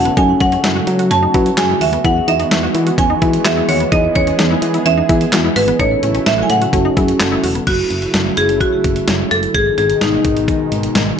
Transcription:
Already playing: analog synth pad C#3 F#3 A3 E4, fm electric piano C#4 E4 A4, marimba F#5
0.05 synth arpeggio sound B3, closed hi-hat
0.17 fm bass F#2, fm electric piano C#4 F#4 A4, synth arpeggio sound D#4, analog synth pad F#4, marimba G#5, kick, closed hi-hat
0.40 fm bass F#2, synth arpeggio sound C#4, marimba F#5, kick, closed hi-hat
0.52 synth arpeggio sound C#4, closed hi-hat
0.64 fm bass F#2, synth arpeggio sound E4, snare, closed hi-hat
0.76 synth arpeggio sound F#4
0.87 fm bass F#3, closed hi-hat
0.99 synth arpeggio sound F#4, closed hi-hat
1.11 fm bass F#2, synth arpeggio sound C#4, marimba A5, closed hi-hat
1.23 synth arpeggio sound D#4
1.34 fm bass F#3, fm electric piano C#4 F#4 B4, synth arpeggio sound E4, kick, closed hi-hat
1.46 closed hi-hat
1.58 fm bass F#2, fm electric piano C#4 F#4 G#4, synth arpeggio sound F#4, marimba G#5, snare, clap, closed hi-hat
1.69 synth arpeggio sound E4
1.81 fm bass D#2, synth arpeggio sound F#4, marimba E5, open hi-hat
1.93 synth arpeggio sound B3, closed hi-hat
2.04 fm bass E2, analog synth pad E3 G#3 B3, fm electric piano B3 E4 G#4, synth arpeggio sound E4, marimba F#5, kick, closed hi-hat
2.28 fm bass E2, synth arpeggio sound D#4, marimba E5, closed hi-hat
2.40 synth arpeggio sound D#4, closed hi-hat
2.51 fm bass E2, synth arpeggio sound E4, snare, closed hi-hat
2.63 synth arpeggio sound F#4
2.75 fm bass E3, closed hi-hat
2.87 synth arpeggio sound F#4, closed hi-hat
2.98 fm bass E2, synth arpeggio sound C#4, marimba G#5, kick, closed hi-hat
3.10 synth arpeggio sound D#4
3.22 fm bass E3, fm electric piano B3 E4 G#4, synth arpeggio sound E4, kick, closed hi-hat
3.33 closed hi-hat
3.45 fm bass E2, fm electric piano B3 E4 G#4, synth arpeggio sound F#4, marimba E5, snare, clap, closed hi-hat
3.57 synth arpeggio sound E4
3.69 fm bass D#2, synth arpeggio sound F#4, marimba C#5, open hi-hat
3.80 synth arpeggio sound B3, closed hi-hat
3.92 fm bass E2, fm electric piano B3 E4 G#4, synth arpeggio sound D#4, analog synth pad G#4, marimba D#5, kick, closed hi-hat
4.15 fm bass E2, synth arpeggio sound C#4, marimba C#5, kick, closed hi-hat
4.27 synth arpeggio sound C#4, closed hi-hat
4.39 fm bass E2, synth arpeggio sound D#4, snare, closed hi-hat
4.51 synth arpeggio sound E4
4.62 fm bass E3, closed hi-hat
4.74 synth arpeggio sound E4, closed hi-hat
4.86 fm bass E2, synth arpeggio sound C#4, marimba E5, closed hi-hat
4.97 synth arpeggio sound D#4
5.09 fm bass E3, fm electric piano B3 E4 G#4, synth arpeggio sound E4, kick, closed hi-hat
5.21 closed hi-hat
5.33 fm bass E2, fm electric piano B3 E4 G#4, synth arpeggio sound F#4, snare, clap, closed hi-hat
5.44 synth arpeggio sound E4
5.56 fm bass G#1, synth arpeggio sound F#4, marimba B4, open hi-hat
5.68 synth arpeggio sound B3, closed hi-hat
5.79 fm bass A1, analog synth pad C#3 F#3 A3 E4, fm electric piano C#4 E4 A4, synth arpeggio sound D#4, marimba C#5, kick, closed hi-hat
6.03 fm bass A1, synth arpeggio sound C#4, closed hi-hat
6.15 synth arpeggio sound C#4, closed hi-hat
6.26 fm bass A1, synth arpeggio sound E4, marimba E5, snare, closed hi-hat
6.38 synth arpeggio sound F#4
6.43 marimba G#5
6.50 fm bass A2, marimba F#5, closed hi-hat
6.62 synth arpeggio sound F#4, closed hi-hat
6.73 fm bass F#1, analog synth pad A3 F#4, fm electric piano C#4 F#4 A4, synth arpeggio sound C#4, kick, closed hi-hat
6.85 synth arpeggio sound D#4
6.97 fm bass F#2, fm electric piano C#4 F#4 G#4, synth arpeggio sound E4, kick, closed hi-hat
7.08 closed hi-hat
7.20 fm bass F#1, fm electric piano C#4 F#4 A4, synth arpeggio sound F#4, snare, clap, closed hi-hat
7.32 synth arpeggio sound E4
7.44 fm bass E1, synth arpeggio sound F#4, open hi-hat
7.55 synth arpeggio sound B3, closed hi-hat
7.67 fm bass F#1, analog synth pad C#3 F#3 A3 E4, marimba F#4, kick, closed hi-hat, crash
7.90 fm bass F#1, closed hi-hat
8.02 closed hi-hat
8.14 fm bass F#1, snare, closed hi-hat
8.37 fm bass F#1, marimba G#4, closed hi-hat
8.49 closed hi-hat
8.60 marimba F#4, kick, closed hi-hat
8.84 fm bass F#1, kick, closed hi-hat
8.96 closed hi-hat
9.08 fm bass F#1, snare, closed hi-hat
9.31 fm bass F#1, marimba A4, closed hi-hat
9.43 closed hi-hat
9.54 fm bass G#1, analog synth pad B2 D#3 G#3 D#4, marimba G#4, kick, closed hi-hat
9.78 fm bass G#1, marimba G#4, closed hi-hat
9.90 closed hi-hat
10.01 fm bass G#1, marimba D#4, snare, closed hi-hat
10.25 fm bass G#1, kick, closed hi-hat
10.37 closed hi-hat
10.48 kick, closed hi-hat
10.72 fm bass G#1, closed hi-hat
10.83 closed hi-hat
10.95 fm bass G#1, snare, closed hi-hat

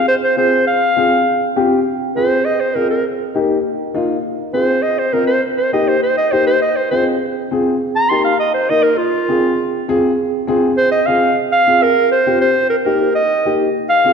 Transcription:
0.08 clarinet C5
0.24 clarinet C5
0.36 upright piano C4 F4 G#4, clarinet C5
0.67 clarinet F5
0.96 upright piano C4 F4 G#4
1.56 upright piano C4 F4 G4
2.16 upright piano C4 F4 G#4, clarinet C5
2.45 clarinet D#5
2.60 clarinet C5
2.75 upright piano C4 F4 G#4, clarinet A#4
2.90 clarinet A#4
3.34 upright piano A#3 D#4 G4
3.94 upright piano A#3 D#4 F4
4.53 upright piano C4 F4 G#4, clarinet C5
4.82 clarinet D#5
4.99 clarinet C5
5.13 upright piano C4 F4 A#4, clarinet A#4
5.27 clarinet C5
5.57 clarinet C5
5.72 upright piano A#3 D#4 G4, clarinet D#5
5.88 clarinet C5
6.03 clarinet C5
6.18 clarinet D#5
6.32 upright piano A#3 D#4 G4, clarinet C5
6.47 clarinet C5
6.62 clarinet D#5
6.76 clarinet C5
6.91 upright piano C4 F4 G#4, clarinet C5
7.51 upright piano C4 F4 G#4
7.96 clarinet A#5
8.09 upright piano A#3 D#4 G4, clarinet C6
8.24 clarinet F5
8.40 clarinet D#5
8.54 clarinet C5
8.69 upright piano A#3 D#4 A#4, clarinet D#5
8.83 clarinet A#4
8.98 clarinet F4
9.28 upright piano C4 F4 G#4
9.88 upright piano C4 F4 G#4
10.47 upright piano C4 F4 G#4
10.77 clarinet C5
10.92 clarinet D#5
11.06 upright piano C4 F4 G#4, clarinet F5
11.52 clarinet F5
11.67 upright piano C4 F4 G#4
11.83 clarinet A#4
12.12 clarinet C5
12.26 upright piano C4 F4 G4
12.41 clarinet C5
12.70 clarinet A#4
12.85 upright piano A#3 D#4 G4, clarinet A#4
13.15 clarinet D#5
13.45 upright piano A#3 D#4 G4
13.90 clarinet F5
14.04 upright piano C4 F4 G#4

